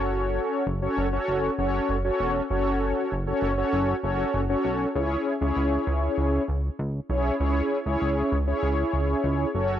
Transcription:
<<
  \new Staff \with { instrumentName = "Analog polysynth" } { \time 4/4 \key cis \phrygian \tempo 4 = 98 <cis' fis' a' cis''>4 r16 <cis' fis' a' cis''>8 <cis' fis' a' cis''>8 r16 <cis' fis' a' cis''>8 r16 <cis' fis' a' cis''>8 r16 | <cis' fis' a' cis''>4 r16 <cis' fis' a' cis''>8 <cis' fis' a' cis''>8 r16 <cis' fis' a' cis''>8 r16 <cis' fis' a' cis''>8 r16 | <cis' e' gis' cis''>8 r16 <cis' e' gis' cis''>4.~ <cis' e' gis' cis''>16 r4 <cis' e' gis' cis''>8 | <cis' e' gis' cis''>8 r16 <cis' e' gis' cis''>8. r16 <cis' e' gis' cis''>4.~ <cis' e' gis' cis''>16 <cis' fis' a' cis''>8 | }
  \new Staff \with { instrumentName = "Analog synth bass" } { \clef bass \time 4/4 \key cis \phrygian fis,,4 fis,,8 fis,,8 fis,,8 fis,,8 fis,,8 e,,8 | fis,,4 fis,,8 fis,,8 fis,,8 fis,,8 fis,,8 b,,8 | cis,8 r16 cis,16 cis,8 cis,8 cis,8 cis,8 cis,8 b,,8 | cis,8 r16 cis,16 cis,8 cis,8 cis,8 cis,8 cis,8 fis,,8 | }
>>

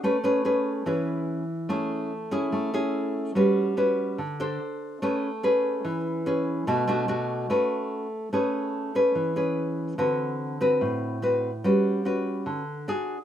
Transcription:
\new Staff \with { instrumentName = "Nylon-string guitar" } { \time 4/4 \key a \major \tempo 4 = 145 << { <cis' gis' b'>8 <cis' gis' b'>8 <cis' gis' b'>4 <cis' gis' b'>4. r8 | <cis' e' gis'>4 r8 <cis' e' gis'>4 <cis' e' gis'>4. | <cis' fis' b'>4 <cis' fis' b'>4 r8 <d' a' c''>4. | <cis' gis' b'>8 r8 <cis' gis' b'>2 <cis' gis' b'>4 |
<a d' fis'>8 <a d' fis'>8 <a d' fis'>4 <cis' fis' b'>4. r8 | <cis' gis' b'>4. <cis' gis' b'>4 <cis' gis' b'>4. | <c' fis' b'>4. <c' fis' b'>4. <c' fis' b'>8 r8 | <cis' fis' b'>4 <cis' fis' b'>4. r8 <d' fis' gis'>8 r8 | } \\ { a2 e2 | a2 a2 | g2 d4 r4 | a2 e2 |
b,2 a2 | a2 e2 | d2 a,2 | g2 d4 r4 | } >> }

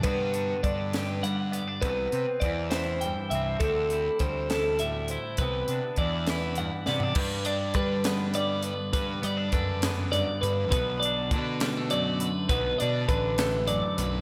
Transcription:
<<
  \new Staff \with { instrumentName = "Clean electric guitar" } { \time 6/8 \key g \major \tempo 4. = 67 b'4 d''8 b'8 fis''8 d''8 | b'4 d''8 c''8 g''8 e''8 | a'4 c''8 a'8 e''8 c''8 | b'4 d''8 b'8 fis''8 d''8 |
b'8 d''8 b'4 d''8 b'8 | b'8 d''8 b'4 d''8 b'8 | b'8 d''8 b'4 d''8 b'8 | b'8 d''8 b'4 d''8 b'8 | }
  \new Staff \with { instrumentName = "Clean electric guitar" } { \time 6/8 \key g \major << { <d b d' fis'>8 d'4 g'4 b16 d'16 | b8 c'4 e'4 c'8 | c'8 e'4 e'4 e'8 | b8 d'4 e'4 b16 d'16 |
r8 d'4 b4. | r8 b16 d'8. b4. | r8 d'4 g16 a4~ a16 | r8 d'4 a4. | } \\ { g,4 d4 g,4 | c4 e4 g,4 | d4 g4 a,4 | c4 e4 g,4 |
g,4 d4 g,4 | g,4 d4 g,4 | b,4 d4 fis,4 | b,4 d4 fis,4 | } >> }
  \new Staff \with { instrumentName = "Picked electric bass" } { \clef bass \time 6/8 \key g \major g,4 g,2 | c,8 c16 r16 e,4. c,8 | d,4 d,2 | c,8 c16 r16 e,4. c8 |
g,4 g2 | g,8 g8 fis,4. g,8 | b,,4 b,2 | b,,8 b,8 a,,4. b,,8 | }
  \new DrumStaff \with { instrumentName = "Drums" } \drummode { \time 6/8 <cymc hh bd>8 hh8 <hh bd>8 <hh sn>8 hh8 hh8 | <hh bd>8 hh8 <hh bd>8 <hh sn>8 hh8 hh8 | <hh bd>8 hh8 <hh bd>8 <hh sn>8 hh8 hh8 | <hh bd>8 hh8 <hh bd>8 <hh sn>8 hh8 sn16 tomfh16 |
<cymc bd>8 hh8 <hh bd>8 <hh sn>8 hh8 hh8 | <hh bd>8 hh8 <hh bd>8 <hh sn>8 hh8 hh8 | <hh bd>8 hh8 <hh bd>8 <hh sn>8 hh8 hh8 | <hh bd>8 hh8 <hh bd>8 <hh sn>8 hh8 hh8 | }
>>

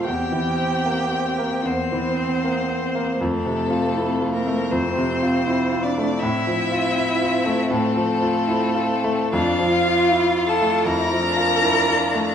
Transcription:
<<
  \new Staff \with { instrumentName = "Violin" } { \time 4/4 \key f \major \tempo 4 = 79 g''2 c''2 | a'4. bes'8 c''4. d''8 | e''2 a'2 | \key d \minor f''4. a''8 bes''2 | }
  \new Staff \with { instrumentName = "Cello" } { \time 4/4 \key f \major g'2 c'2 | a4. bes8 c'4. d'8 | e'2 a2 | \key d \minor f'4. a'8 bes'2 | }
  \new Staff \with { instrumentName = "Violin" } { \time 4/4 \key f \major c'1~ | c'1 | c'1 | \key d \minor d'8 f'4. e'8 d'4. | }
  \new Staff \with { instrumentName = "Grand piano" } { \time 4/4 \key f \major \tuplet 3/2 { e,8 e8 c'8 bes8 c'8 bes8 e,8 e8 c'8 bes8 c'8 bes8 } | \tuplet 3/2 { f,8 c8 f'8 e'8 f'8 a8 f,8 c8 f'8 e'8 f'8 a8 } | \tuplet 3/2 { a,8 f8 f'8 e'8 f'8 a8 a,8 f8 f'8 e'8 f'8 a8 } | \key d \minor \tuplet 3/2 { f,8 f8 f'8 e'8 f'8 a8 f,8 f8 f'8 e'8 f'8 a8 } | }
>>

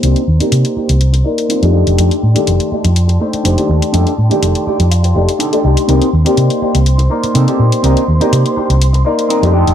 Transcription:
<<
  \new Staff \with { instrumentName = "Violin section" } { \time 4/4 \key c \dorian \tempo 4 = 123 << { c'''1~ | c'''1~ | c'''1~ | c'''1~ |
c'''1 | } \\ { <c'' bes''>2.~ <c'' bes''>8 <d'' g'' a''>8~ | <d'' g'' a''>1~ | <d'' g'' a''>1 | c''1~ |
c''2.~ c''8 <d'' g'' a''>8 | } >> }
  \new Staff \with { instrumentName = "Clean electric guitar" } { \time 4/4 \key c \dorian << { r1 | r1 | r4. d''8 f''4 a''4 | r1 |
r1 | } \\ { <c' ees' c''>8 r16 <c' ees' bes'>16 r2 <c' ees' f'>8 <d' ees' g' a'>8~ | <d' ees' g' a'>8 r16 <d' ees' g' a'>16 r2 <d' ees' g' c''>8 r8 | <d' ees' g' a'>8 r16 <d' ees' g' a'>16 r2 <d' ees' g' a'>8 r8 | <c' ees' bes'>8 r16 <c' ees' g'>16 r2 <c' ees' a'>8 r8 |
<c' ees' bes'>8 r16 <c' ees' bes'>16 r2 <c' ees' bes'>8 <d' ees' g' a'>8 | } >> }
  \new Staff \with { instrumentName = "Grand piano" } { \time 4/4 \key c \dorian <bes d' ees' g'>16 r8 <bes ees' g' d''>8. <bes d' ees' g'>16 r8. <bes ees' bes' d''>8. <a d' ees' g'>8. | <a d' ees' g'>16 r8 <ees a g' d''>8. <a d' ees' g'>16 r8. <a d' ees' c''>8. <ees a g' d''>8. | <a d' ees' g'>16 r8 <ees a g' d''>8. <a d' ees' g'>16 r8. <a d' ees' g'>16 r8 <a d' ees' a'>16 <a d' ees' g'>8 | <bes d' ees' g'>16 r8 <bes ees' g' d''>8. <bes d' ees' g'>16 r8. <bes ees' bes' d''>8. <bes ees' g' d''>8. |
<bes d' ees' g'>16 r8 <bes ees' g' d''>8. <bes d' ees' g'>16 r8. <bes ees' bes' d''>8. <a d' ees' g'>8. | }
  \new Staff \with { instrumentName = "Fingered electric bass" } { \clef bass \time 4/4 \key c \dorian c,16 r16 ees,16 r16 c16 r8 c,8. r8. f,8 f,,16 | f,16 r16 a,16 r16 f,,16 r8 f,8. r8 f,,16 r16 ees,16 r16 | f,16 r16 a,16 r16 f,,16 r8 f,8. f,,16 r8. c,16 r16 | c,16 r16 ees,16 r16 c16 r8 c,8. r8 c16 r16 bes,16 r16 |
c,16 r16 ees,16 r16 c16 r8 c,8. r8. f,8 f,,16 | }
  \new DrumStaff \with { instrumentName = "Drums" } \drummode { \time 4/4 hh16 hh8 hh16 hh16 hh8 hh16 hh16 hh8 hh16 hh16 hh8 hh16 | hh16 hh8 hh16 hh16 hh8 hh16 hh16 hh8 hh16 hh16 hh8 hh16 | hh16 hh8 hh16 hh16 hh8 hh16 hh16 hh8 hh16 hh16 hh8 hh16 | hh16 hh8 hh16 hh16 hh8 hh16 hh16 hh8 hh16 hh16 hh8 hh16 |
hh16 hh8 hh16 hh16 hh8 hh16 hh16 hh8 hh16 hh16 hh8 hh16 | }
>>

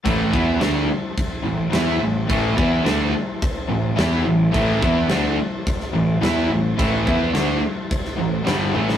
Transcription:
<<
  \new Staff \with { instrumentName = "Tonewheel organ" } { \time 4/4 \key a \minor \tempo 4 = 107 <e' c'' a''>1~ | <e' c'' a''>1~ | <e' c'' a''>1~ | <e' c'' a''>1 | }
  \new Staff \with { instrumentName = "Distorted electric guitar" } { \clef bass \time 4/4 \key a \minor <a, e a>8 <e b e'>8 <d a d'>8 r4 <a, e>8 <e b e'>8 <a, e>8 | <a, e a>8 <e b e'>8 <d a d'>8 r4 <a, e>8 <e b e'>8 <a, e>8 | <a, e a>8 <e b e'>8 <d a d'>8 r4 <a, e>8 <e b e'>8 <a, e>8 | <a, e a>8 <e b e'>8 <d a d'>8 r4 <a, e>8 <g, d g>8 <a, e a>8 | }
  \new Staff \with { instrumentName = "Overdriven electric guitar" } { \clef bass \time 4/4 \key a \minor <a, e a>8 <e b e'>8 <d a d'>8 r4 <a, e>8 <e b e'>8 <a, e>8 | <a, e a>8 <e b e'>8 <d a d'>8 r4 <a, e>8 <e b e'>8 <a, e>8 | <a, e a>8 <e b e'>8 <d a d'>8 r4 <a, e>8 <e b e'>8 <a, e>8 | <a, e a>8 <e b e'>8 <d a d'>8 r4 <a, e>8 <g, d g>8 <a, e a>8 | }
  \new Staff \with { instrumentName = "Overdriven electric guitar" } { \clef bass \time 4/4 \key a \minor <a, e a>8 <e b e'>8 <d a d'>8 r4 <a, e>8 <e b e'>8 <a, e>8 | <a, e a>8 <e b e'>8 <d a d'>8 r4 <a, e>8 <e b e'>8 <a, e>8 | <a, e a>8 <e b e'>8 <d a d'>8 r4 <a, e>8 <e b e'>8 <a, e>8 | <a, e a>8 <e b e'>8 <d a d'>8 r4 <a, e>8 <g, d g>8 <a, e a>8 | }
  \new Staff \with { instrumentName = "Picked electric bass" } { \clef bass \time 4/4 \key a \minor a,,8 e,8 d,8 r4 a,,8 e,8 a,,8 | a,,8 e,8 d,8 r4 a,,8 e,8 a,,8 | a,,8 e,8 d,8 r4 a,,8 e,8 a,,8 | a,,8 e,8 d,8 r4 a,,8 g,,8 a,,8 | }
  \new DrumStaff \with { instrumentName = "Drums" } \drummode { \time 4/4 <cymc bd>8 bd8 <cymc sn>4 <cymc bd>4 <cymc sn>4 | <cymc bd>8 bd8 <cymc sn>4 <cymc bd>4 <cymc sn>4 | <cymc bd>8 bd8 <cymc sn>4 <cymc bd>16 sn8. <cymc sn>4 | <cymc bd>8 bd8 <cymc sn>4 <cymc bd>16 sn8. <cymc sn>8 tommh16 sn16 | }
>>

